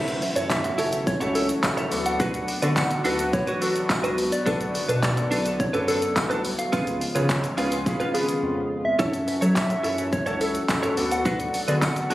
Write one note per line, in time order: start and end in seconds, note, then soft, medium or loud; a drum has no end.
0.00 0.24 F#1 loud
0.00 1.90 E3 medium
0.00 6.69 F#3 medium
0.00 0.31 A3 medium
0.00 6.69 A3 medium
0.00 0.31 C#4 medium
0.00 1.90 C#4 medium
0.00 0.32 E4 medium
0.00 0.32 F#4 medium
0.00 6.69 F#4 medium
0.00 0.38 E5 medium
0.00 impact medium
0.07 muted clean electric guitar stroke soft
0.07 closed hi-hat medium
0.07 shaker medium
0.22 muted clean electric guitar stroke soft
0.22 open hi-hat medium
0.22 tambourine medium
0.22 shaker medium
0.36 0.67 F#2 loud
0.36 0.49 E4 medium
0.36 0.48 A4 medium
0.36 0.48 C#5 medium
0.36 0.51 C#5 medium
0.36 closed hi-hat medium
0.36 shaker medium
0.50 1.06 E5 medium
0.50 kick loud
0.50 clap loud
0.50 tambourine medium
0.50 shaker medium
0.64 0.95 A3 medium
0.64 0.95 C#4 medium
0.64 0.95 E4 medium
0.64 0.95 F#4 medium
0.64 muted clean electric guitar stroke medium
0.64 closed hi-hat medium
0.64 shaker medium
0.78 1.09 F#1 loud
0.78 0.93 E4 medium
0.78 0.92 A4 medium
0.78 0.91 C#5 medium
0.78 open hi-hat medium
0.78 shaker soft
0.92 1.05 E4 medium
0.92 1.05 A4 medium
0.92 1.04 C#5 medium
0.92 closed hi-hat medium
0.92 shaker medium
1.07 1.33 C#5 loud
1.07 muted clean electric guitar stroke medium
1.07 kick loud
1.07 tambourine soft
1.07 shaker medium
1.20 1.51 C#2 medium
1.20 1.44 A3 medium
1.20 1.44 C#4 medium
1.20 1.44 E4 medium
1.20 1.34 E4 medium
1.20 1.44 F#4 medium
1.20 1.35 A4 medium
1.20 1.35 C#5 medium
1.20 closed hi-hat soft
1.20 shaker soft
1.35 1.47 E4 medium
1.35 2.07 A4 loud
1.35 1.47 A4 medium
1.35 1.48 C#5 medium
1.35 open hi-hat medium
1.35 tambourine medium
1.35 shaker soft
1.49 muted clean electric guitar stroke soft
1.49 closed hi-hat medium
1.49 shaker medium
1.63 1.84 F#1 loud
1.63 1.92 A3 medium
1.63 1.92 C#4 medium
1.63 1.92 E4 medium
1.63 1.90 F#4 medium
1.63 muted clean electric guitar stroke soft
1.63 kick loud
1.63 clap loud
1.63 tambourine medium
1.63 shaker medium
1.77 1.91 E4 medium
1.77 1.92 A4 medium
1.77 1.92 C#5 medium
1.77 closed hi-hat medium
1.77 shaker medium
1.91 2.43 D2 loud
1.91 2.48 B3 medium
1.91 6.69 B3 medium
1.91 4.44 D4 medium
1.91 2.48 D4 medium
1.91 2.48 F#4 medium
1.91 2.48 A4 medium
1.91 muted clean electric guitar stroke medium
1.91 open hi-hat medium
1.91 tambourine medium
1.91 shaker medium
2.06 2.64 F#5 loud
2.06 muted clean electric guitar stroke medium
2.06 closed hi-hat medium
2.06 shaker medium
2.20 2.35 D4 medium
2.20 2.34 F#4 loud
2.20 2.33 B4 medium
2.20 kick loud
2.20 tambourine soft
2.20 shaker medium
2.34 muted clean electric guitar stroke soft
2.34 closed hi-hat medium
2.34 shaker medium
2.48 muted clean electric guitar stroke soft
2.48 open hi-hat medium
2.48 tambourine medium
2.48 shaker medium
2.62 2.93 D3 loud
2.62 2.85 B3 medium
2.62 2.85 D4 medium
2.62 2.75 D4 medium
2.62 2.85 F#4 medium
2.62 2.75 F#4 medium
2.62 2.85 A4 medium
2.62 2.74 B4 medium
2.62 2.78 D5 medium
2.62 closed hi-hat medium
2.62 shaker medium
2.76 3.35 F#5 loud
2.76 muted clean electric guitar stroke soft
2.76 kick loud
2.76 clap loud
2.76 tambourine medium
2.76 shaker medium
2.91 muted clean electric guitar stroke soft
2.91 closed hi-hat medium
2.91 shaker medium
3.04 3.35 D2 loud
3.04 3.20 B3 medium
3.04 3.20 D4 medium
3.04 3.20 F#4 medium
3.04 3.19 F#4 medium
3.04 3.20 A4 loud
3.04 3.18 B4 loud
3.04 open hi-hat medium
3.04 tambourine soft
3.04 shaker medium
3.19 3.32 D4 medium
3.19 3.32 F#4 medium
3.19 3.31 B4 medium
3.19 closed hi-hat medium
3.19 shaker medium
3.33 3.48 B3 medium
3.33 3.48 D4 medium
3.33 3.48 F#4 medium
3.33 3.48 B4 medium
3.33 3.63 C#5 loud
3.33 kick loud
3.33 tambourine soft
3.33 shaker medium
3.47 3.78 A1 loud
3.47 3.60 D4 medium
3.47 3.61 F#4 medium
3.47 3.62 B4 medium
3.47 closed hi-hat soft
3.47 shaker soft
3.61 4.07 B3 medium
3.61 4.07 D4 medium
3.61 3.73 D4 medium
3.61 4.07 F#4 medium
3.61 4.32 F#4 medium
3.61 3.74 F#4 medium
3.61 4.07 A4 medium
3.61 3.74 B4 medium
3.61 open hi-hat medium
3.61 tambourine soft
3.61 shaker medium
3.76 muted clean electric guitar stroke soft
3.76 closed hi-hat medium
3.76 shaker medium
3.90 4.30 C#2 medium
3.90 muted clean electric guitar stroke soft
3.90 kick loud
3.90 clap loud
3.90 tambourine medium
3.90 shaker medium
4.04 4.17 D4 medium
4.04 4.17 F#4 medium
4.04 4.18 B4 loud
4.04 closed hi-hat medium
4.04 shaker medium
4.18 muted clean electric guitar stroke medium
4.18 open hi-hat medium
4.18 tambourine medium
4.18 shaker medium
4.32 4.91 D5 loud
4.32 muted clean electric guitar stroke medium
4.32 closed hi-hat medium
4.32 shaker medium
4.46 4.77 B1 loud
4.46 6.71 D3 medium
4.46 4.84 B3 medium
4.46 4.61 D4 medium
4.46 4.84 D4 medium
4.46 4.84 F#4 medium
4.46 4.84 A4 medium
4.46 4.60 A4 loud
4.46 4.59 B4 loud
4.46 kick loud
4.46 tambourine soft
4.46 shaker medium
4.60 muted clean electric guitar stroke soft
4.60 closed hi-hat medium
4.60 shaker medium
4.74 muted clean electric guitar stroke soft
4.74 open hi-hat medium
4.74 tambourine medium
4.74 shaker medium
4.88 5.19 B2 medium
4.88 5.02 D4 medium
4.88 5.01 A4 medium
4.88 5.01 B4 medium
4.88 5.05 B4 medium
4.88 closed hi-hat medium
4.88 shaker medium
5.03 5.62 D5 loud
5.03 kick loud
5.03 clap loud
5.03 tambourine medium
5.03 shaker medium
5.17 5.47 B3 medium
5.17 5.47 D4 medium
5.17 5.47 F#4 medium
5.17 5.47 A4 medium
5.17 muted clean electric guitar stroke soft
5.17 closed hi-hat medium
5.17 shaker medium
5.31 5.62 B1 loud
5.31 5.46 D4 medium
5.31 5.45 A4 medium
5.31 5.44 B4 medium
5.31 open hi-hat medium
5.31 tambourine soft
5.31 shaker medium
5.45 5.58 D4 medium
5.45 5.58 A4 medium
5.45 5.57 B4 medium
5.45 closed hi-hat medium
5.45 shaker medium
5.59 5.88 C#5 loud
5.59 muted clean electric guitar stroke soft
5.59 kick loud
5.59 shaker medium
5.73 6.04 F#2 loud
5.73 5.96 B3 medium
5.73 5.96 D4 medium
5.73 5.86 D4 medium
5.73 5.96 F#4 medium
5.73 5.96 A4 medium
5.73 5.87 A4 medium
5.73 5.88 B4 medium
5.73 closed hi-hat soft
5.73 shaker soft
5.88 6.00 D4 medium
5.88 6.55 A4 loud
5.88 6.00 A4 medium
5.88 6.01 B4 medium
5.88 open hi-hat medium
5.88 tambourine soft
5.88 shaker medium
6.02 muted clean electric guitar stroke soft
6.02 closed hi-hat medium
6.02 shaker medium
6.16 6.57 C2 loud
6.16 6.46 B3 medium
6.16 6.46 D4 medium
6.16 6.46 F#4 medium
6.16 6.47 A4 medium
6.16 muted clean electric guitar stroke soft
6.16 kick loud
6.16 clap loud
6.16 tambourine medium
6.16 shaker medium
6.30 6.43 D4 medium
6.30 6.44 A4 medium
6.30 6.44 B4 medium
6.30 closed hi-hat medium
6.30 shaker medium
6.44 muted clean electric guitar stroke soft
6.44 open hi-hat medium
6.44 tambourine medium
6.44 shaker medium
6.58 7.11 F5 loud
6.58 muted clean electric guitar stroke soft
6.58 closed hi-hat medium
6.58 shaker medium
6.72 7.03 C#2 loud
6.72 8.97 C#3 medium
6.72 6.95 B3 medium
6.72 6.88 C#4 medium
6.72 6.96 C#4 medium
6.72 6.96 F4 medium
6.72 6.87 F4 medium
6.72 6.96 G#4 medium
6.72 6.86 B4 loud
6.72 kick loud
6.72 tambourine soft
6.72 shaker medium
6.87 muted clean electric guitar stroke soft
6.87 closed hi-hat medium
6.87 shaker medium
7.01 muted clean electric guitar stroke soft
7.01 open hi-hat medium
7.01 tambourine medium
7.01 shaker medium
7.15 7.46 C#3 loud
7.15 7.38 B3 medium
7.15 7.38 C#4 medium
7.15 7.28 C#4 medium
7.15 7.38 F4 medium
7.15 7.28 F4 medium
7.15 7.38 G#4 medium
7.15 7.27 B4 medium
7.15 7.55 C#5 loud
7.15 closed hi-hat medium
7.15 shaker medium
7.29 muted clean electric guitar stroke soft
7.29 kick loud
7.29 clap loud
7.29 tambourine medium
7.29 shaker medium
7.43 muted clean electric guitar stroke soft
7.43 closed hi-hat medium
7.43 shaker medium
7.57 7.88 C#2 loud
7.57 7.73 B3 medium
7.57 7.72 C#4 medium
7.57 7.73 C#4 medium
7.57 7.73 F4 medium
7.57 7.71 F4 medium
7.57 7.73 G#4 loud
7.57 7.70 B4 medium
7.57 8.16 F5 loud
7.57 open hi-hat medium
7.57 tambourine soft
7.57 shaker soft
7.71 7.85 C#4 medium
7.71 7.84 F4 medium
7.71 7.84 B4 medium
7.71 closed hi-hat medium
7.71 shaker medium
7.86 8.01 B3 medium
7.86 8.01 C#4 medium
7.86 8.01 F4 medium
7.86 8.01 G#4 medium
7.86 kick loud
7.86 tambourine soft
7.86 shaker medium
8.00 8.31 G#1 loud
8.00 8.13 C#4 medium
8.00 8.14 F4 medium
8.00 8.15 B4 loud
8.00 closed hi-hat soft
8.00 shaker soft
8.14 8.60 B3 medium
8.14 8.26 C#4 medium
8.14 8.60 C#4 medium
8.14 8.60 F4 medium
8.14 8.27 F4 medium
8.14 8.86 G#4 loud
8.14 8.60 B4 medium
8.14 8.27 B4 medium
8.14 open hi-hat medium
8.14 tambourine soft
8.14 shaker medium
8.28 muted clean electric guitar stroke soft
8.28 closed hi-hat medium
8.28 shaker medium
8.43 8.83 F2 loud
8.85 9.43 E5 loud
8.99 9.30 F#2 medium
8.99 9.37 C#4 medium
8.99 9.14 E4 medium
8.99 9.37 E4 medium
8.99 9.37 F#4 medium
8.99 9.37 A4 medium
8.99 9.13 A4 loud
8.99 9.12 C#5 loud
8.99 kick loud
8.99 tambourine soft
8.99 shaker medium
9.13 muted clean electric guitar stroke soft
9.13 closed hi-hat medium
9.13 shaker medium
9.27 muted clean electric guitar stroke soft
9.27 open hi-hat medium
9.27 tambourine medium
9.27 shaker medium
9.41 9.72 F#3 loud
9.41 9.54 E4 medium
9.41 9.54 A4 medium
9.41 9.53 C#5 medium
9.41 9.58 C#5 medium
9.41 closed hi-hat medium
9.41 shaker medium
9.56 10.14 E5 loud
9.56 kick loud
9.56 clap loud
9.56 tambourine medium
9.56 shaker medium
9.69 10.00 C#4 medium
9.69 10.00 E4 medium
9.69 10.00 F#4 medium
9.69 10.00 A4 medium
9.69 muted clean electric guitar stroke soft
9.69 closed hi-hat medium
9.69 shaker medium
9.83 10.15 F#2 loud
9.83 9.98 E4 medium
9.83 9.97 A4 medium
9.83 9.96 C#5 medium
9.83 open hi-hat medium
9.83 shaker soft
9.98 10.11 E4 soft
9.98 10.10 A4 medium
9.98 10.10 C#5 medium
9.98 closed hi-hat medium
9.98 shaker medium
10.12 10.43 C#5 loud
10.12 muted clean electric guitar stroke medium
10.12 kick loud
10.12 shaker medium
10.26 10.57 C#2 loud
10.26 10.49 C#4 medium
10.26 10.49 E4 medium
10.26 10.39 E4 medium
10.26 10.49 F#4 medium
10.26 10.40 A4 medium
10.26 10.50 A4 medium
10.26 10.41 C#5 medium
10.26 closed hi-hat soft
10.26 shaker soft
10.40 10.52 E4 medium
10.40 10.53 A4 medium
10.40 11.11 A4 loud
10.40 10.53 C#5 medium
10.40 open hi-hat medium
10.40 tambourine soft
10.40 shaker medium
10.55 closed hi-hat medium
10.55 shaker medium
10.69 10.89 F#2 loud
10.69 10.97 C#4 medium
10.69 10.97 E4 medium
10.69 10.96 F#4 medium
10.69 10.96 A4 medium
10.69 muted clean electric guitar stroke soft
10.69 kick loud
10.69 clap loud
10.69 tambourine medium
10.69 shaker medium
10.83 10.97 E4 medium
10.83 10.97 A4 medium
10.83 10.98 C#5 medium
10.83 closed hi-hat medium
10.83 shaker medium
10.97 11.48 D2 loud
10.97 11.54 B3 medium
10.97 12.14 B3 medium
10.97 12.14 D4 medium
10.97 11.54 D4 medium
10.97 11.54 F#4 medium
10.97 11.54 A4 medium
10.97 muted clean electric guitar stroke soft
10.97 open hi-hat medium
10.97 tambourine medium
10.97 shaker medium
11.11 11.64 F#5 loud
11.11 muted clean electric guitar stroke medium
11.11 closed hi-hat medium
11.11 shaker medium
11.25 11.41 D4 medium
11.25 11.40 F#4 medium
11.25 11.39 B4 medium
11.25 kick loud
11.25 tambourine soft
11.25 shaker medium
11.40 muted clean electric guitar stroke soft
11.40 closed hi-hat medium
11.40 shaker medium
11.54 muted clean electric guitar stroke soft
11.54 open hi-hat medium
11.54 tambourine medium
11.54 shaker medium
11.68 11.99 D3 loud
11.68 11.91 B3 medium
11.68 11.91 D4 medium
11.68 11.81 D4 medium
11.68 11.91 F#4 medium
11.68 11.80 F#4 medium
11.68 11.91 G#4 medium
11.68 11.80 B4 medium
11.68 11.75 D5 medium
11.68 closed hi-hat medium
11.68 shaker medium
11.82 12.14 F#5 loud
11.82 kick loud
11.82 clap loud
11.82 tambourine medium
11.82 shaker medium
11.96 muted clean electric guitar stroke soft
11.96 closed hi-hat medium
11.96 shaker medium
12.10 12.14 D2 loud
12.10 12.14 B3 medium
12.10 12.14 D4 medium
12.10 12.14 F#4 medium
12.10 12.14 G#4 loud
12.10 open hi-hat medium
12.10 tambourine soft
12.10 shaker soft